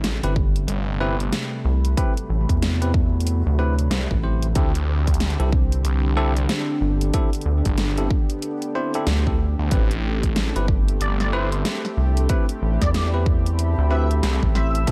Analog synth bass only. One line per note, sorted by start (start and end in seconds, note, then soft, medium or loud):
0.24 0.66 G1 loud
1.65 1.95 C2 medium
2.29 2.46 A1 medium
2.50 3.43 E2 loud
3.46 3.89 D2 loud
4.11 4.54 A1 medium
5.40 5.83 C2 loud
6.81 7.11 G1 medium
7.46 7.62 D2 medium
9.07 9.56 D2 medium
10.56 10.99 G1 loud
11.97 12.28 C2 medium
12.62 12.79 A1 loud
12.82 13.75 E2 loud
13.78 14.21 D2 loud
14.43 14.86 A1 medium